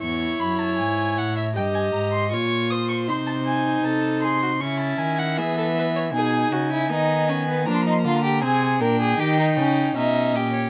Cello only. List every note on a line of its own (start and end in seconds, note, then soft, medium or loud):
0.03 0.38 E2 medium
0.41 0.81 F#2 medium
0.80 1.19 G#2 medium
1.18 1.58 A2 medium
1.56 1.93 G2 medium
1.94 2.34 G#2 medium
2.32 3.10 A#2 medium
3.09 3.84 C3 medium
3.85 4.62 C3 medium
4.61 4.99 C#3 medium
4.99 5.39 D#3 medium
5.38 6.15 E3 medium
6.14 6.51 B2 medium
6.52 6.92 C#3 medium
6.90 7.67 D#3 medium
7.66 8.06 F3 medium
8.04 8.44 D3 medium
8.43 8.82 C3 medium
8.80 9.18 A#2 medium
9.19 9.58 D#3 medium
9.57 9.95 C#3 medium
9.96 10.35 B2 medium
10.34 10.70 A#2 medium